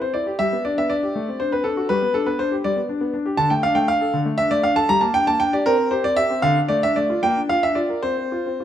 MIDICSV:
0, 0, Header, 1, 2, 480
1, 0, Start_track
1, 0, Tempo, 502092
1, 383, Time_signature, 6, 3, 24, 8
1, 5658, Tempo, 523560
1, 6618, Tempo, 546448
1, 8091, End_track
2, 0, Start_track
2, 0, Title_t, "Grand piano"
2, 0, Program_c, 0, 0
2, 14, Note_on_c, 0, 60, 50
2, 15, Note_on_c, 0, 72, 83
2, 130, Note_on_c, 0, 74, 89
2, 136, Note_on_c, 0, 64, 50
2, 138, Note_off_c, 0, 72, 0
2, 143, Note_off_c, 0, 60, 0
2, 253, Note_on_c, 0, 67, 60
2, 266, Note_off_c, 0, 64, 0
2, 280, Note_off_c, 0, 74, 0
2, 371, Note_on_c, 0, 76, 106
2, 375, Note_on_c, 0, 55, 74
2, 379, Note_off_c, 0, 67, 0
2, 497, Note_off_c, 0, 55, 0
2, 504, Note_on_c, 0, 59, 56
2, 595, Note_off_c, 0, 76, 0
2, 619, Note_on_c, 0, 74, 88
2, 622, Note_on_c, 0, 62, 58
2, 632, Note_off_c, 0, 59, 0
2, 744, Note_off_c, 0, 74, 0
2, 745, Note_on_c, 0, 59, 53
2, 745, Note_on_c, 0, 76, 96
2, 751, Note_off_c, 0, 62, 0
2, 856, Note_on_c, 0, 74, 95
2, 860, Note_on_c, 0, 62, 54
2, 867, Note_off_c, 0, 76, 0
2, 872, Note_off_c, 0, 59, 0
2, 987, Note_on_c, 0, 67, 52
2, 990, Note_off_c, 0, 62, 0
2, 1104, Note_on_c, 0, 57, 66
2, 1106, Note_off_c, 0, 67, 0
2, 1221, Note_off_c, 0, 57, 0
2, 1226, Note_on_c, 0, 60, 53
2, 1335, Note_on_c, 0, 72, 92
2, 1339, Note_off_c, 0, 74, 0
2, 1344, Note_on_c, 0, 62, 53
2, 1350, Note_off_c, 0, 60, 0
2, 1457, Note_on_c, 0, 71, 92
2, 1458, Note_off_c, 0, 72, 0
2, 1459, Note_on_c, 0, 60, 52
2, 1469, Note_off_c, 0, 62, 0
2, 1566, Note_on_c, 0, 69, 89
2, 1571, Note_on_c, 0, 62, 55
2, 1578, Note_off_c, 0, 71, 0
2, 1585, Note_off_c, 0, 60, 0
2, 1692, Note_on_c, 0, 66, 59
2, 1700, Note_off_c, 0, 62, 0
2, 1785, Note_off_c, 0, 69, 0
2, 1807, Note_on_c, 0, 71, 105
2, 1812, Note_on_c, 0, 55, 76
2, 1814, Note_off_c, 0, 66, 0
2, 1930, Note_off_c, 0, 55, 0
2, 1935, Note_on_c, 0, 59, 59
2, 2047, Note_on_c, 0, 69, 93
2, 2049, Note_off_c, 0, 71, 0
2, 2051, Note_on_c, 0, 62, 62
2, 2060, Note_off_c, 0, 59, 0
2, 2164, Note_on_c, 0, 71, 89
2, 2166, Note_on_c, 0, 59, 60
2, 2169, Note_off_c, 0, 69, 0
2, 2177, Note_off_c, 0, 62, 0
2, 2285, Note_on_c, 0, 72, 93
2, 2288, Note_off_c, 0, 71, 0
2, 2289, Note_on_c, 0, 62, 57
2, 2295, Note_off_c, 0, 59, 0
2, 2405, Note_on_c, 0, 67, 57
2, 2416, Note_off_c, 0, 62, 0
2, 2430, Note_off_c, 0, 72, 0
2, 2528, Note_on_c, 0, 74, 95
2, 2530, Note_on_c, 0, 55, 66
2, 2533, Note_off_c, 0, 67, 0
2, 2643, Note_on_c, 0, 59, 56
2, 2644, Note_off_c, 0, 55, 0
2, 2670, Note_off_c, 0, 74, 0
2, 2763, Note_on_c, 0, 62, 60
2, 2769, Note_off_c, 0, 59, 0
2, 2876, Note_on_c, 0, 59, 60
2, 2888, Note_off_c, 0, 62, 0
2, 2997, Note_on_c, 0, 62, 59
2, 3004, Note_off_c, 0, 59, 0
2, 3113, Note_on_c, 0, 67, 61
2, 3125, Note_off_c, 0, 62, 0
2, 3226, Note_on_c, 0, 81, 120
2, 3232, Note_on_c, 0, 50, 80
2, 3237, Note_off_c, 0, 67, 0
2, 3348, Note_on_c, 0, 79, 92
2, 3353, Note_off_c, 0, 50, 0
2, 3353, Note_off_c, 0, 81, 0
2, 3353, Note_on_c, 0, 57, 61
2, 3471, Note_on_c, 0, 77, 109
2, 3473, Note_off_c, 0, 79, 0
2, 3478, Note_on_c, 0, 62, 66
2, 3482, Note_off_c, 0, 57, 0
2, 3585, Note_on_c, 0, 79, 103
2, 3587, Note_on_c, 0, 57, 64
2, 3594, Note_off_c, 0, 77, 0
2, 3603, Note_off_c, 0, 62, 0
2, 3711, Note_off_c, 0, 79, 0
2, 3711, Note_on_c, 0, 77, 105
2, 3715, Note_on_c, 0, 62, 59
2, 3717, Note_off_c, 0, 57, 0
2, 3833, Note_on_c, 0, 69, 67
2, 3841, Note_off_c, 0, 62, 0
2, 3953, Note_on_c, 0, 50, 73
2, 3960, Note_off_c, 0, 69, 0
2, 4000, Note_off_c, 0, 77, 0
2, 4068, Note_on_c, 0, 57, 63
2, 4071, Note_off_c, 0, 50, 0
2, 4184, Note_on_c, 0, 76, 110
2, 4189, Note_on_c, 0, 62, 65
2, 4199, Note_off_c, 0, 57, 0
2, 4310, Note_on_c, 0, 74, 110
2, 4311, Note_off_c, 0, 76, 0
2, 4312, Note_on_c, 0, 57, 58
2, 4319, Note_off_c, 0, 62, 0
2, 4431, Note_on_c, 0, 77, 106
2, 4434, Note_off_c, 0, 74, 0
2, 4434, Note_on_c, 0, 62, 65
2, 4441, Note_off_c, 0, 57, 0
2, 4551, Note_on_c, 0, 81, 118
2, 4552, Note_on_c, 0, 69, 69
2, 4555, Note_off_c, 0, 77, 0
2, 4563, Note_off_c, 0, 62, 0
2, 4676, Note_off_c, 0, 69, 0
2, 4676, Note_off_c, 0, 81, 0
2, 4676, Note_on_c, 0, 82, 127
2, 4678, Note_on_c, 0, 55, 83
2, 4788, Note_on_c, 0, 81, 94
2, 4795, Note_on_c, 0, 58, 69
2, 4796, Note_off_c, 0, 55, 0
2, 4799, Note_off_c, 0, 82, 0
2, 4914, Note_on_c, 0, 79, 120
2, 4916, Note_off_c, 0, 81, 0
2, 4918, Note_on_c, 0, 62, 62
2, 4926, Note_off_c, 0, 58, 0
2, 5040, Note_off_c, 0, 79, 0
2, 5040, Note_on_c, 0, 81, 113
2, 5044, Note_on_c, 0, 58, 61
2, 5048, Note_off_c, 0, 62, 0
2, 5159, Note_on_c, 0, 79, 109
2, 5163, Note_on_c, 0, 62, 61
2, 5165, Note_off_c, 0, 81, 0
2, 5173, Note_off_c, 0, 58, 0
2, 5286, Note_off_c, 0, 79, 0
2, 5289, Note_on_c, 0, 74, 93
2, 5290, Note_on_c, 0, 67, 71
2, 5294, Note_off_c, 0, 62, 0
2, 5409, Note_on_c, 0, 70, 119
2, 5411, Note_on_c, 0, 60, 90
2, 5412, Note_off_c, 0, 67, 0
2, 5412, Note_off_c, 0, 74, 0
2, 5511, Note_off_c, 0, 60, 0
2, 5525, Note_on_c, 0, 60, 62
2, 5649, Note_on_c, 0, 72, 93
2, 5651, Note_on_c, 0, 67, 63
2, 5655, Note_off_c, 0, 70, 0
2, 5658, Note_off_c, 0, 60, 0
2, 5770, Note_off_c, 0, 72, 0
2, 5772, Note_on_c, 0, 74, 111
2, 5773, Note_on_c, 0, 60, 59
2, 5778, Note_off_c, 0, 67, 0
2, 5884, Note_on_c, 0, 76, 118
2, 5889, Note_on_c, 0, 67, 61
2, 5891, Note_off_c, 0, 74, 0
2, 5898, Note_off_c, 0, 60, 0
2, 6010, Note_on_c, 0, 60, 70
2, 6016, Note_off_c, 0, 67, 0
2, 6121, Note_on_c, 0, 77, 117
2, 6127, Note_on_c, 0, 50, 89
2, 6128, Note_off_c, 0, 76, 0
2, 6131, Note_off_c, 0, 60, 0
2, 6244, Note_on_c, 0, 62, 59
2, 6246, Note_off_c, 0, 50, 0
2, 6269, Note_off_c, 0, 77, 0
2, 6361, Note_on_c, 0, 74, 106
2, 6366, Note_on_c, 0, 57, 70
2, 6375, Note_off_c, 0, 62, 0
2, 6489, Note_off_c, 0, 74, 0
2, 6496, Note_on_c, 0, 76, 108
2, 6497, Note_off_c, 0, 57, 0
2, 6497, Note_on_c, 0, 62, 61
2, 6613, Note_on_c, 0, 74, 97
2, 6618, Note_off_c, 0, 76, 0
2, 6619, Note_on_c, 0, 57, 58
2, 6624, Note_off_c, 0, 62, 0
2, 6734, Note_on_c, 0, 65, 66
2, 6742, Note_off_c, 0, 57, 0
2, 6828, Note_off_c, 0, 74, 0
2, 6849, Note_on_c, 0, 79, 114
2, 6852, Note_on_c, 0, 58, 82
2, 6853, Note_off_c, 0, 65, 0
2, 6965, Note_on_c, 0, 62, 56
2, 6968, Note_off_c, 0, 58, 0
2, 6992, Note_off_c, 0, 79, 0
2, 7082, Note_on_c, 0, 77, 106
2, 7085, Note_on_c, 0, 65, 54
2, 7093, Note_off_c, 0, 62, 0
2, 7203, Note_on_c, 0, 62, 51
2, 7203, Note_on_c, 0, 76, 102
2, 7204, Note_off_c, 0, 77, 0
2, 7212, Note_off_c, 0, 65, 0
2, 7309, Note_on_c, 0, 74, 86
2, 7312, Note_on_c, 0, 65, 57
2, 7324, Note_off_c, 0, 76, 0
2, 7330, Note_off_c, 0, 62, 0
2, 7434, Note_on_c, 0, 70, 54
2, 7444, Note_off_c, 0, 65, 0
2, 7549, Note_on_c, 0, 72, 101
2, 7554, Note_on_c, 0, 60, 70
2, 7558, Note_off_c, 0, 74, 0
2, 7561, Note_off_c, 0, 70, 0
2, 7668, Note_off_c, 0, 60, 0
2, 7807, Note_on_c, 0, 65, 57
2, 7932, Note_on_c, 0, 60, 55
2, 7938, Note_off_c, 0, 65, 0
2, 8056, Note_on_c, 0, 65, 50
2, 8061, Note_off_c, 0, 60, 0
2, 8091, Note_off_c, 0, 65, 0
2, 8091, Note_off_c, 0, 72, 0
2, 8091, End_track
0, 0, End_of_file